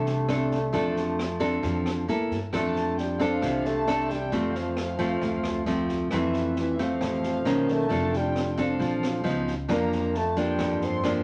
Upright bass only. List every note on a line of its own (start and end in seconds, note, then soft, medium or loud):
0.00 0.69 C2 medium
0.73 1.59 F2 medium
1.63 2.05 F2 loud
2.08 2.28 A2 medium
2.30 2.50 G2 medium
2.53 3.38 F2 medium
3.42 4.28 C2 loud
4.32 5.18 F2 medium
5.21 6.07 D2 loud
6.11 6.97 F2 medium
7.01 7.42 A1 loud
7.45 7.87 B1 medium
7.90 8.76 F1 medium
8.80 9.22 A#1 loud
9.24 9.66 C#2 loud
9.69 10.55 F2 medium
10.59 11.23 G2 medium